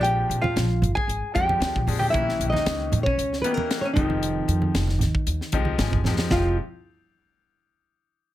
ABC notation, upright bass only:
X:1
M:4/4
L:1/16
Q:"Swing 16ths" 1/4=115
K:Bbmix
V:1 name="Upright bass" clef=bass
B,,,2 B,,2 B,,,2 A,,, z A,,, z F,,2 D,, B,,, B,,2 | B,,, z B,,, z _D,,2 B,, z D,,2 z4 F,,,2- | F,,,2 F,,2 F,,,2 E,, z E,, z C,,2 A,,, F,,, F,,2 | F,,,2 z12 z2 |]